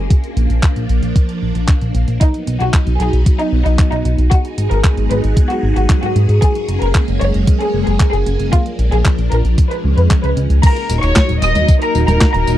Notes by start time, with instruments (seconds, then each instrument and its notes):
Already playing: string machine A#3
0.10 string machine F3 D4, kick, closed hi-hat
0.24 closed hi-hat
0.37 analog synth bass A#1, closed hi-hat
0.50 analog synth bass A#1, closed hi-hat
0.63 kick, clap, closed hi-hat
0.76 analog synth bass A#1, closed hi-hat
0.89 analog synth bass A#1, closed hi-hat
1.02 analog synth bass A#1, closed hi-hat
1.16 kick, closed hi-hat
1.29 closed hi-hat
1.42 analog synth bass A#1
1.55 analog synth bass A#1, closed hi-hat
1.68 kick, clap, closed hi-hat
1.81 analog synth bass A#1, closed hi-hat
1.95 analog synth bass A#1, closed hi-hat
2.08 analog synth bass A#1, closed hi-hat
2.21 string machine F#3 B3 D#4, violin section D#4, kick, closed hi-hat
2.34 closed hi-hat
2.47 analog synth bass B1, closed hi-hat
2.60 analog synth bass B1, violin section F#4, closed hi-hat
2.74 kick, clap, closed hi-hat
2.87 analog synth bass B1, closed hi-hat
3.00 analog synth bass B1, violin section G#4, closed hi-hat
3.13 analog synth bass B1, closed hi-hat
3.26 kick, closed hi-hat
3.39 violin section D#4, closed hi-hat
3.52 analog synth bass B1
3.66 analog synth bass B1, violin section D#4, closed hi-hat
3.79 kick, clap, closed hi-hat
3.92 analog synth bass B1, violin section D#4, closed hi-hat
4.05 analog synth bass B1, closed hi-hat
4.18 analog synth bass B1, closed hi-hat
4.31 string machine F#3 G#3 B3 D#4 G#4, violin section F#4, kick, closed hi-hat
4.45 closed hi-hat
4.58 analog synth bass G#1, closed hi-hat
4.71 analog synth bass G#1, violin section A#4, closed hi-hat
4.84 kick, clap, closed hi-hat
4.97 analog synth bass G#1, closed hi-hat
5.10 analog synth bass G#1, violin section B4, closed hi-hat
5.24 analog synth bass G#1, closed hi-hat
5.37 kick, closed hi-hat
5.50 violin section F#4, closed hi-hat
5.63 analog synth bass G#1
5.76 analog synth bass G#1, violin section F#4, closed hi-hat
5.89 kick, clap, closed hi-hat
6.03 analog synth bass G#2, violin section F#4, closed hi-hat
6.16 analog synth bass G#2, closed hi-hat
6.29 analog synth bass G#2, closed hi-hat
6.42 string machine G#3 A#3 C#4, violin section G#4, kick, closed hi-hat
6.55 closed hi-hat
6.68 analog synth bass F#1, closed hi-hat
6.82 analog synth bass F#1, violin section A#4, closed hi-hat
6.95 kick, clap, closed hi-hat
7.08 analog synth bass F#1, closed hi-hat
7.21 analog synth bass F#1, violin section C#5, closed hi-hat
7.34 analog synth bass F#1, closed hi-hat
7.47 kick, closed hi-hat
7.60 violin section G#4, closed hi-hat
7.74 analog synth bass F#1
7.87 analog synth bass F#1, violin section G#4, closed hi-hat
8.00 kick, clap, closed hi-hat
8.13 analog synth bass F#1, violin section G#4, closed hi-hat
8.26 analog synth bass F#1, closed hi-hat
8.40 analog synth bass F#1, closed hi-hat
8.53 string machine F3 D4, violin section F4, kick, closed hi-hat
8.66 closed hi-hat
8.79 analog synth bass A#1, closed hi-hat
8.92 analog synth bass A#1, violin section G#4, closed hi-hat
9.05 kick, clap, closed hi-hat
9.18 analog synth bass A#1, closed hi-hat
9.32 analog synth bass A#1, violin section A#4, closed hi-hat
9.45 analog synth bass A#1, closed hi-hat
9.58 string machine G#3 C#4, kick, closed hi-hat
9.71 violin section B4, closed hi-hat
9.84 analog synth bass C#2
9.97 analog synth bass F2, violin section B4, closed hi-hat
10.11 kick, clap, closed hi-hat
10.24 analog synth bass C#2, violin section B4, closed hi-hat
10.37 analog synth bass C#2, closed hi-hat
10.50 analog synth bass C#2, closed hi-hat
10.63 string machine F#3 A#3 D#4, violin section A#4 A#5, kick, closed hi-hat, crash, tambourine
10.76 closed hi-hat, tambourine
10.89 analog synth bass D#1, closed hi-hat, tambourine
11.03 analog synth bass D#1, violin section C#5 C#6, closed hi-hat, tambourine
11.16 kick, snare, clap, closed hi-hat, tambourine
11.29 analog synth bass D#1, closed hi-hat, tambourine
11.42 analog synth bass D#1, violin section D#5 D#6, closed hi-hat, tambourine
11.55 analog synth bass D#1, closed hi-hat, tambourine, high conga
11.68 kick, closed hi-hat, tambourine
11.82 violin section A#4 A#5, closed hi-hat, tambourine
11.95 analog synth bass D#1, tambourine
12.08 analog synth bass D#1, violin section A#4 A#5, closed hi-hat, tambourine, high conga
12.21 kick, snare, clap, closed hi-hat, tambourine
12.34 analog synth bass D#1, violin section A#4 A#5, closed hi-hat, tambourine
12.47 analog synth bass D#1, closed hi-hat, tambourine